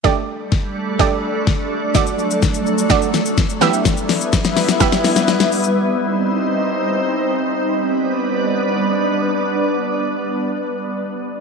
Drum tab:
HH |----------------|-x-x-x-x-x-x-x-x|-xox-xox-xox-xox|----------------|
SH |----------------|xxxxxxxxxxxxxxxx|xxxxxxxxxxxxxxxx|----------------|
SD |o---o---o---o---|o---o---o-o-o-o-|o-o-oooooooooo--|----------------|
BD |o---o---o---o---|o---o---o---o---|o---o---o-------|----------------|

HH |----------------|----------------|
SH |----------------|----------------|
SD |----------------|----------------|
BD |----------------|----------------|